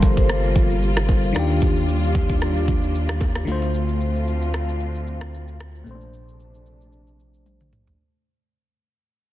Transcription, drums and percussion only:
0.02 kick, high bongo, low conga, shaker
0.17 kick, shaker
0.29 cross-stick, shaker
0.44 shaker
0.55 kick, low conga, shaker
0.70 shaker
0.83 shaker
0.97 cross-stick, low bongo, shaker
1.09 kick, high bongo, shaker
1.23 shaker
1.35 cross-stick, low bongo, shaker
1.50 high bongo, shaker
1.62 kick, low conga, shaker
1.76 shaker
1.88 low bongo, shaker
2.03 shaker
2.15 kick, high bongo, low conga, shaker
2.29 kick, shaker
2.41 cross-stick, shaker
2.56 shaker
2.68 kick, low conga, shaker
2.82 shaker
2.95 shaker
3.09 cross-stick, low bongo, shaker
3.21 kick, high bongo, shaker
3.35 cross-stick, shaker
3.48 low bongo, shaker
3.62 high bongo, shaker
3.74 shaker
3.89 shaker
4.01 shaker
4.15 shaker
4.27 shaker
4.42 shaker
4.54 cross-stick, shaker
4.69 shaker
4.80 shaker
4.95 shaker
5.07 shaker
5.21 cross-stick, shaker
5.34 shaker
5.48 shaker
5.60 cross-stick, shaker
5.75 shaker
5.87 shaker
6.01 shaker
6.13 shaker
6.28 shaker
6.40 shaker
6.54 shaker
6.66 shaker
6.81 shaker
6.92 shaker
7.07 shaker
7.20 shaker
7.34 shaker
7.46 high tom, shaker
7.60 mid tom, shaker
7.73 mid tom, shaker
7.87 floor tom, shaker

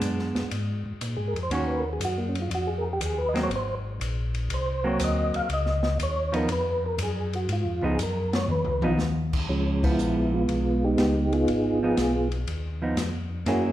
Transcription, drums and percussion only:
0.01 hi-hat pedal, ride
0.19 snare
0.35 snare, ride
0.51 ride
1.01 hi-hat pedal, ride
1.36 ride
1.51 ride
2.01 hi-hat pedal, ride
2.35 ride
2.51 ride
3.01 hi-hat pedal, ride
3.35 snare, ride
3.51 ride
4.01 hi-hat pedal, ride
4.34 ride
4.50 ride
4.99 hi-hat pedal, ride
5.34 ride
5.50 ride
5.66 snare
5.83 snare
6.00 hi-hat pedal, ride
6.33 ride
6.49 ride
6.98 hi-hat pedal, ride
7.33 ride
7.49 ride
7.99 hi-hat pedal, ride
8.33 snare, ride
8.48 mid tom
8.65 mid tom
8.82 mid tom
8.99 snare, hi-hat pedal
9.33 kick, crash
9.83 kick, crash
9.99 hi-hat pedal
10.49 ride
10.98 snare, hi-hat pedal, ride
11.32 ride
11.48 ride
11.97 snare, hi-hat pedal, ride
12.32 ride
12.47 ride
12.97 snare, hi-hat pedal, ride
13.46 snare, ride

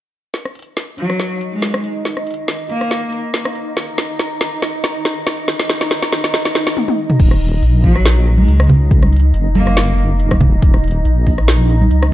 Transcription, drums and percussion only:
0.34 snare, closed hi-hat
0.45 cross-stick
0.55 closed hi-hat
0.59 closed hi-hat
0.62 closed hi-hat
0.77 snare, closed hi-hat
0.98 closed hi-hat
1.10 cross-stick
1.20 snare, closed hi-hat
1.41 closed hi-hat
1.62 snare, closed hi-hat
1.74 cross-stick
1.84 closed hi-hat
2.05 snare, closed hi-hat
2.17 cross-stick
2.27 closed hi-hat
2.31 closed hi-hat
2.34 closed hi-hat
2.48 snare, closed hi-hat
2.70 closed hi-hat
2.81 cross-stick
2.91 snare, closed hi-hat
3.12 closed hi-hat
3.34 snare, closed hi-hat
3.45 cross-stick
3.55 closed hi-hat
3.77 snare, closed hi-hat
3.98 snare, closed hi-hat
4.02 closed hi-hat
4.05 closed hi-hat
4.19 snare, closed hi-hat
4.41 snare, closed hi-hat
4.62 snare, closed hi-hat
4.84 snare, closed hi-hat
5.05 snare, closed hi-hat
5.27 snare, closed hi-hat
5.48 snare, closed hi-hat
5.60 snare
5.70 snare, closed hi-hat
5.73 closed hi-hat
5.77 closed hi-hat
5.81 snare
5.91 snare, closed hi-hat
6.02 snare
6.13 snare, closed hi-hat
6.24 snare
6.34 snare, closed hi-hat
6.45 snare
6.55 snare, closed hi-hat
6.67 snare
6.77 high tom
6.88 high tom
7.10 mid tom
7.20 kick, closed hi-hat, crash
7.31 cross-stick
7.41 closed hi-hat
7.45 closed hi-hat
7.48 closed hi-hat
7.63 closed hi-hat
7.84 kick, open hi-hat
7.96 cross-stick
8.06 snare, closed hi-hat
8.27 closed hi-hat
8.38 high conga
8.48 closed hi-hat
8.60 cross-stick
8.69 closed hi-hat, low conga
8.91 kick, closed hi-hat
9.02 cross-stick, high conga
9.13 closed hi-hat
9.16 closed hi-hat
9.20 closed hi-hat
9.34 closed hi-hat
9.55 open hi-hat, high conga
9.67 cross-stick
9.77 snare, closed hi-hat
9.98 closed hi-hat
10.20 closed hi-hat
10.31 kick, cross-stick, high conga
10.40 kick, closed hi-hat, low conga
10.62 kick, closed hi-hat
10.74 cross-stick
10.84 closed hi-hat
10.88 closed hi-hat
10.91 closed hi-hat
11.05 closed hi-hat
11.27 kick, open hi-hat
11.38 cross-stick
11.48 snare, closed hi-hat
11.70 closed hi-hat
11.81 high conga
11.91 closed hi-hat
12.03 cross-stick

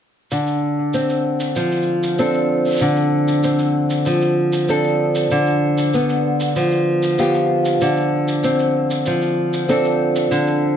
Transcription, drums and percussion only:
0.31 shaker
0.47 shaker
0.94 shaker
1.09 shaker
1.40 shaker
1.56 shaker
1.71 shaker
1.77 shaker
1.82 shaker
2.03 shaker
2.18 shaker
2.34 shaker
2.65 shaker
2.68 shaker
2.70 shaker
2.72 shaker
2.74 shaker
2.76 shaker
2.79 shaker
2.81 shaker
2.96 shaker
3.28 shaker
3.43 shaker
3.59 shaker
3.90 shaker
4.06 shaker
4.21 shaker
4.53 shaker
4.68 shaker
4.84 shaker
5.15 shaker
5.31 shaker
5.47 shaker
5.78 shaker
5.93 shaker
6.09 shaker
6.40 shaker
6.56 shaker
6.71 shaker
7.03 shaker
7.18 shaker
7.34 shaker
7.65 shaker
7.81 shaker
7.97 shaker
8.28 shaker
8.43 shaker
8.59 shaker
8.90 shaker
9.06 shaker
9.22 shaker
9.53 shaker
9.69 shaker
9.85 shaker
10.16 shaker
10.31 shaker
10.47 shaker

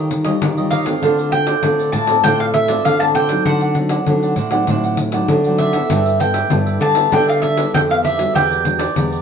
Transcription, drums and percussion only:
0.11 pandeiro
0.25 pandeiro
0.42 pandeiro
0.57 pandeiro
0.71 pandeiro
0.86 pandeiro
1.03 pandeiro
1.18 pandeiro
1.32 pandeiro
1.47 pandeiro
1.63 pandeiro
1.79 pandeiro
1.93 pandeiro
2.07 pandeiro
2.24 pandeiro
2.40 pandeiro
2.54 pandeiro
2.68 pandeiro
2.85 pandeiro
3.01 pandeiro
3.15 pandeiro
3.29 pandeiro
3.45 pandeiro
3.61 pandeiro
3.75 pandeiro
3.89 pandeiro
4.06 pandeiro
4.23 pandeiro
4.36 pandeiro
4.51 pandeiro
4.67 pandeiro
4.83 pandeiro
4.97 pandeiro
5.12 pandeiro
5.28 pandeiro
5.44 pandeiro
5.58 pandeiro
5.73 pandeiro
5.90 pandeiro
6.06 pandeiro
6.20 pandeiro
6.34 pandeiro
6.50 pandeiro
6.67 pandeiro
6.81 pandeiro
6.95 pandeiro
7.12 pandeiro
7.28 pandeiro
7.43 pandeiro
7.57 pandeiro
7.75 pandeiro
7.90 pandeiro
8.04 pandeiro
8.19 pandeiro
8.36 pandeiro
8.51 pandeiro
8.65 pandeiro
8.79 pandeiro
8.96 pandeiro
9.12 pandeiro

